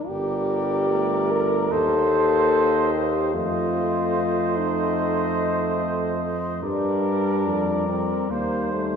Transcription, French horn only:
0.08 G4
1.30 A#4
1.72 A4
2.93 G4
3.34 F4
4.57 D#4
6.64 D4
7.89 C4
8.30 A#3
8.73 A3

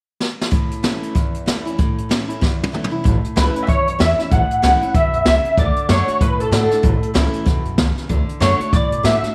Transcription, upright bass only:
3.06 A1
3.36 C#2
3.55 muted upright bass stroke
3.87 F#2
4.00 E2
4.19 muted upright bass stroke
4.31 A1
4.50 muted upright bass stroke
4.63 C#2
4.81 muted upright bass stroke
4.94 E2
5.13 F#2
5.26 C#2
5.45 muted upright bass stroke
5.58 D2
5.89 F#2
6.08 muted upright bass stroke
6.21 A2
6.39 B2
6.51 A2
6.70 muted upright bass stroke
6.84 A1
7.02 muted upright bass stroke
7.15 C#2
7.34 muted upright bass stroke
7.46 E2
7.65 F#2
7.78 C#2
7.96 muted upright bass stroke
8.10 D2
8.28 muted upright bass stroke
8.41 F#2
8.60 muted upright bass stroke
8.73 A2
8.91 B2
9.04 A2
9.22 muted upright bass stroke

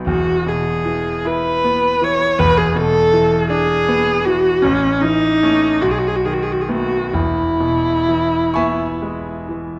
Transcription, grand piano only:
Already playing: B1 F#3 B3 D#4
0.06 E1 E2
0.46 B2
0.85 E3
1.25 E4
1.65 B3
2.02 E3
2.39 E1 E2
2.75 B2
3.13 E3
3.50 D4
3.89 B3
4.27 E3
4.64 A1
5.03 E3
5.43 A3 C#4
5.82 B1
6.26 D#3
6.68 A3 B3
7.13 E1 E2
7.60 B2
8.09 E3
8.54 B3 E5 G#5 C#6
9.02 G#3
9.49 E3

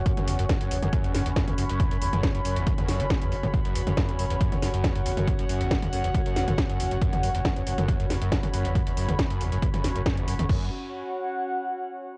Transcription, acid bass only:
0.06 F#2
0.17 F#2
0.28 E2
0.39 F#2
0.49 E2
0.61 F#2
0.71 E2
0.82 F#2
0.93 F#2
1.04 E2
1.14 F#2
1.26 E2
1.36 F#2
1.48 E2
1.58 F#2
1.70 F#2
1.80 E2
1.91 F#2
2.02 E2
2.13 F#2
2.23 E2
2.35 F#2
2.45 F#2
2.56 E2
2.67 F#2
2.78 E2
2.88 F#2
3.00 E3
3.10 A2
3.22 E2
3.32 F#3
3.43 A2
3.54 E2
3.65 F#2
3.75 E2
3.87 F#2
3.97 F#2
4.09 E2
4.19 F#2
4.30 E2
4.41 F#2
4.52 E2
4.62 F#2
4.74 F#2
4.84 E2
4.96 F#2
5.06 E2
5.17 F#2
5.39 F#2
5.49 F#2
5.61 E2
5.71 F#2
5.82 E2
5.93 F#2
6.04 E2
6.15 F#2
6.26 F#2
6.36 E2
6.48 F#2
6.58 E2
6.69 F#2
6.80 E2
6.91 F#2
7.01 F#2
7.13 E2
7.23 F#2
7.35 E2
7.45 F#2
7.56 E2
7.67 F#2
7.78 F#2
7.88 E2
8.00 F#2
8.10 E2
8.22 F#2
8.32 E2
8.43 F#2
8.54 F#2
8.65 E2
8.75 F#2
8.87 E2
8.97 F#2
9.09 E2
9.19 F#2
9.30 F#2
9.41 E2
9.52 F#2
9.62 E2
9.74 F#2
9.84 E2
9.95 F#2
10.06 F#2
10.17 E2
10.28 F#2
10.39 E2
10.49 F#2

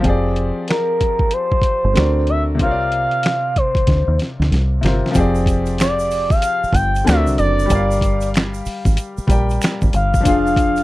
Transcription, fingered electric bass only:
0.05 F1
1.62 muted fingered electric bass stroke
1.84 G1
1.97 D2
2.60 C2
3.88 D2
4.08 D#2
4.40 D2
4.51 C2
4.83 G1
5.16 F1
6.63 muted fingered electric bass stroke
6.73 G1
7.08 D2
7.27 C2
7.39 F#1
7.71 G1
8.66 muted fingered electric bass stroke
8.86 G#1
9.18 muted fingered electric bass stroke
9.29 A#1
9.83 G#1
9.94 G1
10.26 F1

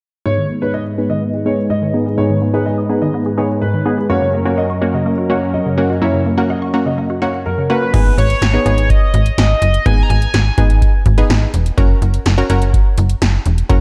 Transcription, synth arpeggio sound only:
0.26 G#2
0.38 D#3
0.50 B3
0.62 G#4
0.74 G#5
0.86 D#6
1.10 D#3
1.22 B3
1.34 G#4
1.46 G#5
1.70 G#2
1.82 D#3
1.94 B3
2.06 G#4
2.18 G#2
2.30 D#3
2.42 B3
2.54 G#4
2.66 G#5
2.78 D#6
3.02 D#3
3.14 B3
3.26 G#4
3.38 G#5
3.62 G#2
3.74 D#3
3.86 B3
3.98 G#4
4.10 F#2
4.22 C#3
4.34 A#3
4.46 F#4
4.58 F#5
4.70 C#6
4.94 C#3
5.06 A#3
5.18 F#4
5.30 F#5
5.54 F#2
5.66 C#3
5.78 A#3
5.90 F#4
6.02 F#2
6.14 C#3
6.26 A#3
6.38 F#4
6.50 F#5
6.62 C#6
6.86 C#3
6.98 A#3
7.10 F#4
7.22 F#5
7.46 F#2
7.58 C#3
7.70 A#3
7.82 F#4

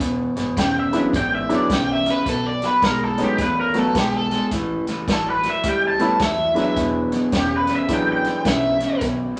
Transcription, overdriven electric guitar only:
0.60 G5
0.80 E5
1.17 G5
1.35 E5
1.55 D5
1.73 G5
1.93 E5
2.11 B4
2.29 A4
2.47 D5
2.65 B4
2.85 A#4
3.05 A4
3.24 G4
3.42 B4
3.61 A#4
3.79 A4
3.99 G4
4.17 A4
5.12 A4
5.30 B4
5.50 E5
5.69 G5
5.88 A5
6.24 E5
7.37 G4
7.57 B4
7.76 E5
7.94 G5
8.13 G5
8.49 E5

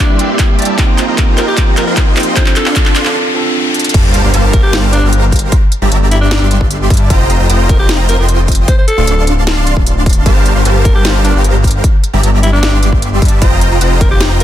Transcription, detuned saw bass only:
0.09 G1
0.58 G1
0.78 F1
1.18 F1
2.66 D1
3.94 G1
4.24 G1
4.34 G1
5.03 G1
5.82 G1
5.92 G1
6.41 G1
6.90 G2
7.10 F1
7.40 F1
7.49 F1
8.19 F1
8.98 D1
9.07 D1
9.57 D1
9.77 D1
10.26 G1
10.56 G1
10.65 G1
11.35 G1
12.14 G1
12.23 G1
12.73 G1
13.22 G2
13.42 F1
13.71 F1
13.81 F1

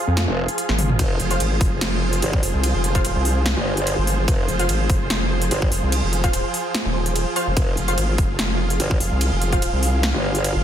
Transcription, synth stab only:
Already playing: F4 C5 F5
1.31 F4 C5 F5
2.95 F4 C5 F5
4.59 F4 C5 F5
6.24 F4 C5 F5
7.36 F4 C5 F5
7.88 F4 C5 F5
9.53 F4 C5 F5

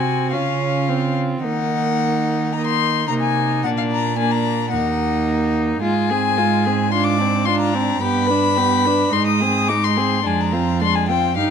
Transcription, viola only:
Already playing: C4
0.33 C#4
0.89 C4
1.44 A#3
2.55 A#3
3.10 A#3
3.66 A#3
4.19 A#3
4.73 A#3
5.83 G#3
6.10 C4
6.38 G#3
6.67 C4
6.93 D4
7.21 C4
7.48 D4
7.74 C4
8.03 B3
8.30 D4
8.57 B3
8.86 D4
9.15 G#3
9.42 C4
9.69 G#3
9.98 C4
10.25 G#3
10.53 C4
10.81 G#3
11.09 C4
11.38 D#4

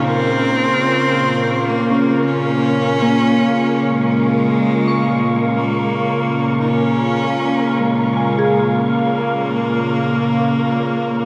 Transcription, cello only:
0.02 C4
1.69 A#3
2.23 C#4
3.90 G#3
5.57 A#3
6.60 D#4
6.68 C#4
7.79 G#3
8.90 A#3

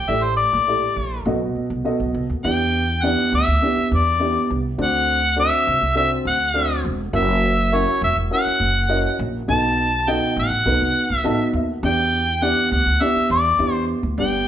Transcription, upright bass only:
0.09 A1
0.53 A#1
0.96 A#1
1.25 B1
1.56 muted upright bass stroke
1.70 C2
2.00 B1
2.14 C2
2.30 D#2
2.44 E2
3.32 D2
3.48 D2
3.77 muted upright bass stroke
3.91 E2
4.50 C2
4.78 D2
5.67 C2
5.81 C2
6.25 D2
6.85 E1
7.13 F#1
8.01 E1
8.17 E1
8.46 muted upright bass stroke
8.60 F#1
9.19 A#1
9.48 B1
10.36 A1
10.50 A1
10.66 B1
10.80 C2
11.10 B1
11.25 A1
11.53 D#2
11.83 E2
12.72 D2
12.86 D2
13.15 muted upright bass stroke
13.30 E2
13.59 E2
14.03 D2
14.18 G1

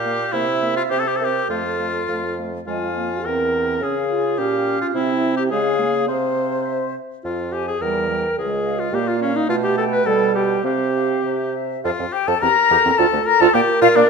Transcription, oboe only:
Already playing: G4
0.32 E4
0.76 F4
0.90 G4
0.99 A4
1.08 G4
1.16 A4
1.24 G4
1.50 F4
2.67 F4
3.26 A#4
3.83 G#4
4.38 G4
4.81 F4
4.95 E4
5.37 G4
5.51 G#4
6.08 C5
7.24 F4
7.52 G4
7.68 G#4
7.82 A#4
8.39 G#4
8.80 F4
8.94 G4
9.08 F4
9.22 C#4
9.36 D#4
9.50 F4
9.64 G4
9.78 A4
9.91 B4
10.06 A4
10.35 G4
10.66 G4
11.85 F4
12.13 G4
12.27 A4
12.42 A#4
12.98 A4
13.26 A#4
13.40 A4
13.54 G4
13.81 F4
13.96 D4

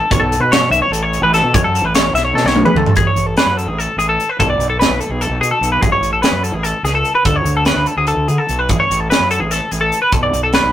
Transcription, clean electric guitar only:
Already playing: A4
0.11 C#5
0.20 A4
0.41 B4
0.52 C#5
0.71 E5
0.82 C#5
0.92 A4
1.03 C#5
1.23 B4
1.34 A4
1.54 C#5
1.64 A4
1.85 B4
1.95 C#5
2.15 E5
2.25 C#5
2.35 A4
2.46 C#5
2.65 B4
2.77 A4
2.97 G#4
3.07 C#5
3.27 A4
3.38 B4
3.57 A4
3.68 G#4
3.79 A4
3.99 G#4
4.09 A4
4.29 B4
4.40 A4
4.50 D5
4.70 A4
4.80 B4
5.00 A4
5.10 G#4
5.21 A4
5.41 G#4
5.51 A4
5.72 B4
5.81 G#4
5.92 C#5
6.13 A4
6.22 B4
6.43 A4
6.54 G#4
6.63 A4
6.85 G#4
6.95 A4
7.15 B4
7.26 A4
7.36 C#5
7.57 A4
7.66 B4
7.87 A4
7.98 G#4
8.08 A4
8.28 G#4
8.38 A4
8.59 B4
8.70 G#4
8.80 C#5
9.00 A4
9.10 B4
9.31 A4
9.40 G#4
9.51 A4
9.71 G#4
9.81 A4
10.02 B4
10.13 A4
10.23 D5
10.43 A4
10.55 B4

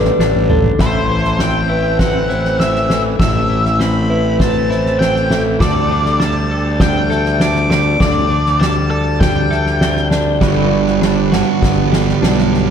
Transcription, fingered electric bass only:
0.19 A1
0.79 A1
3.19 A1
5.60 D2
8.00 D2
10.41 G1
11.62 G1
12.22 B1

